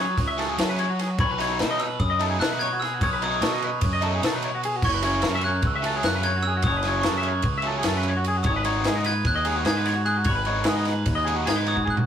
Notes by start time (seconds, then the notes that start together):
Already playing: F#3 C#6
0.00 C#5
0.17 C#2, kick, snare, ride
0.28 E5
0.38 C#3 F#3 A3 C#4 A4, snare, ride
0.49 G#4
0.58 C#3 F#3 A3 C#4 A4, snare, ride
0.69 B4
0.78 C#5, ride
0.90 F#4
0.99 G#4, snare, ride
1.10 F#4
1.19 B1 C#5 B5, kick, ride
1.31 B4
1.38 B2 F#3 A3 D#4 C#5, snare, ride
1.59 B2 F#3 A3 D#4 A4, snare, ride
1.71 D#5
1.79 B4 E6, ride
2.00 F#2 D#6, kick, ride
2.10 D#5
2.20 B2 F#3 A3 D#4 A4, ride
2.30 G#4
2.40 B2 F#3 A3 D#4 A4 F#6, snare, ride
2.52 B4
2.59 C#5 G#6, ride
2.73 F#4
2.80 G#4 E6, snare, ride
2.94 F#4
3.01 B1 C#5 D#6, kick, ride
3.13 B4
3.22 B2 F#3 A3 D#4 C#5 D#6, ride
3.41 B2 F#3 A3 D#4 A4 C#6, snare, ride
3.53 D#5
3.62 B4, ride
3.81 F#2, kick, snare, ride
3.93 D#5
4.01 B2 F#3 A3 D#4 A4, ride
4.15 G#4
4.22 B2 F#3 A3 D#4 A4, snare, ride
4.34 B4
4.42 C#5, ride
4.55 F#4
4.63 G#4, ride
4.76 F#4
4.82 F#1 C#5 C#6, kick, crash
4.94 B4
5.03 C#3 F#3 A3 C#4 C#5, snare, ride
5.22 F#2 C#3 F#3 A3 C#4, snare, ride
5.26 A4
5.35 E5
5.41 F#6, ride
5.45 C#5
5.62 C#2, kick, ride
5.67 E6
5.75 E5
5.82 C#3 F#3 A3 C#4 A4, ride
5.96 G#4
6.03 F#2 C#3 F#3 A3 C#4 A4 F#6, snare, ride
6.15 B4
6.23 C#5 G#6, ride
6.36 F#4
6.42 E6, ride
6.47 G#4
6.57 F#4
6.62 F#1 D#6, kick, ride
6.67 C#5
6.77 B4
6.83 C#3 F#3 A3 C#4, snare, ride
6.88 C#5
7.01 F#2 C#3 F#3 A3 C#4 C#6, snare, ride
7.07 A4
7.17 E5
7.23 ride
7.27 C#5
7.42 C#2, kick, ride
7.58 E5
7.62 C#3 F#3 A3 C#4, ride
7.67 A4
7.79 G#4
7.83 F#2 C#3 F#3 A3 C#4, snare, ride
7.88 A4
7.97 B4
8.03 ride
8.08 C#5
8.17 F#4
8.24 G#4, ride
8.37 F#4
8.43 G#1 C#5 D#6, kick, ride
8.56 B4
8.65 D#3 G#3 B3 D#4 C#5, ride
8.84 G#2 D#3 G#3 B3 D#4 G#4, snare, ride
8.96 D#5
9.04 B4 G#6, snare, ride
9.25 D#2 F#6, kick, ride
9.36 D#5
9.45 D#3 G#3 B3 D#4 G#4, ride
9.55 F#4
9.65 G#2 D#3 G#3 B3 D#4 G#4 G#6, snare, ride
9.76 B4
9.86 C#5, snare, ride
9.95 F#4
10.05 G#4 F#6, ride
10.17 F#4
10.24 G#1 C#5, kick, ride
10.30 B5
10.35 B4
10.45 D#3 G#3 B3 D#4 C#5, ride
10.64 G#2 D#3 G#3 B3 D#4 G#4, snare, ride
10.76 D#5
10.85 B4, snare, ride
11.06 D#2, kick, ride
11.15 D#5
11.25 D#3 G#3 B3 D#4 G#4, ride
11.36 F#4
11.46 G#2 D#3 G#3 B3 D#4 G#4 G#6, snare, ride
11.56 B4
11.66 C#5 D#6, ride
11.75 F#4, kick
11.85 G#4, kick
11.90 F#6
11.96 F#4, floor tom